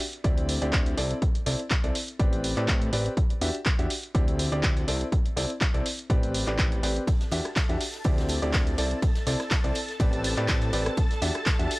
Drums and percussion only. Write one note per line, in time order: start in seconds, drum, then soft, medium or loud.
0.00 open hi-hat loud
0.13 closed hi-hat soft
0.24 kick loud
0.24 closed hi-hat medium
0.38 closed hi-hat soft
0.49 open hi-hat loud
0.62 closed hi-hat soft
0.73 kick loud
0.73 clap loud
0.73 closed hi-hat medium
0.86 closed hi-hat soft
0.97 open hi-hat loud
1.11 closed hi-hat soft
1.22 kick loud
1.22 closed hi-hat medium
1.35 closed hi-hat soft
1.46 open hi-hat loud
1.59 closed hi-hat soft
1.70 kick loud
1.70 clap loud
1.70 closed hi-hat medium
1.84 closed hi-hat soft
1.95 open hi-hat loud
2.08 closed hi-hat soft
2.19 kick loud
2.19 closed hi-hat medium
2.33 closed hi-hat soft
2.44 open hi-hat loud
2.57 clap soft
2.57 closed hi-hat soft
2.68 kick loud
2.68 clap loud
2.68 closed hi-hat medium
2.81 closed hi-hat soft
2.93 open hi-hat loud
3.06 closed hi-hat soft
3.17 kick loud
3.17 closed hi-hat medium
3.30 closed hi-hat soft
3.41 open hi-hat loud
3.55 closed hi-hat soft
3.66 kick loud
3.66 clap loud
3.66 closed hi-hat medium
3.79 closed hi-hat soft
3.90 open hi-hat loud
4.03 closed hi-hat soft
4.15 kick loud
4.15 closed hi-hat medium
4.28 closed hi-hat soft
4.39 open hi-hat loud
4.52 closed hi-hat soft
4.63 kick loud
4.63 clap loud
4.63 closed hi-hat medium
4.77 closed hi-hat soft
4.88 open hi-hat loud
5.01 closed hi-hat soft
5.12 kick loud
5.12 closed hi-hat medium
5.26 closed hi-hat soft
5.37 open hi-hat loud
5.50 closed hi-hat soft
5.61 kick loud
5.61 clap loud
5.61 closed hi-hat medium
5.74 closed hi-hat soft
5.86 open hi-hat loud
5.99 closed hi-hat soft
6.10 kick loud
6.10 closed hi-hat medium
6.23 closed hi-hat soft
6.34 open hi-hat loud
6.47 clap soft
6.59 kick loud
6.59 clap loud
6.59 closed hi-hat medium
6.72 closed hi-hat soft
6.83 open hi-hat loud
6.96 closed hi-hat soft
7.07 kick loud
7.07 closed hi-hat medium
7.07 ride medium
7.20 snare soft
7.20 closed hi-hat soft
7.31 open hi-hat loud
7.31 ride medium
7.45 cross-stick medium
7.45 closed hi-hat soft
7.56 kick loud
7.56 snare loud
7.56 clap loud
7.56 closed hi-hat medium
7.56 ride medium
7.69 closed hi-hat soft
7.81 open hi-hat loud
7.81 open hi-hat medium
7.93 snare soft
7.93 closed hi-hat soft
8.04 kick loud
8.04 closed hi-hat medium
8.04 ride medium
8.18 snare medium
8.18 closed hi-hat soft
8.28 open hi-hat loud
8.28 ride medium
8.42 closed hi-hat soft
8.53 kick loud
8.53 cross-stick medium
8.53 snare loud
8.53 clap loud
8.53 closed hi-hat medium
8.53 ride medium
8.67 closed hi-hat soft
8.67 ride soft
8.78 open hi-hat loud
8.78 ride medium
8.91 closed hi-hat soft
9.02 kick loud
9.02 closed hi-hat medium
9.02 ride medium
9.15 snare medium
9.15 closed hi-hat soft
9.27 open hi-hat loud
9.27 ride medium
9.40 cross-stick medium
9.40 snare soft
9.40 closed hi-hat soft
9.51 kick loud
9.51 snare loud
9.51 clap loud
9.51 closed hi-hat medium
9.51 ride medium
9.64 closed hi-hat soft
9.75 open hi-hat medium
9.75 ride medium
9.89 snare soft
9.89 closed hi-hat soft
10.00 kick loud
10.00 closed hi-hat medium
10.00 ride medium
10.13 closed hi-hat soft
10.24 open hi-hat loud
10.24 ride medium
10.37 clap soft
10.37 closed hi-hat soft
10.48 kick loud
10.48 snare loud
10.48 clap loud
10.48 closed hi-hat medium
10.48 ride medium
10.62 closed hi-hat soft
10.62 ride soft
10.73 open hi-hat loud
10.73 ride medium
10.86 cross-stick medium
10.86 closed hi-hat soft
10.97 kick loud
10.97 closed hi-hat medium
10.97 ride medium
11.11 snare soft
11.11 closed hi-hat soft
11.22 open hi-hat loud
11.22 ride medium
11.35 cross-stick medium
11.35 closed hi-hat soft
11.46 kick loud
11.46 snare loud
11.46 clap loud
11.46 closed hi-hat medium
11.46 ride medium
11.59 closed hi-hat soft
11.71 open hi-hat medium
11.71 open hi-hat loud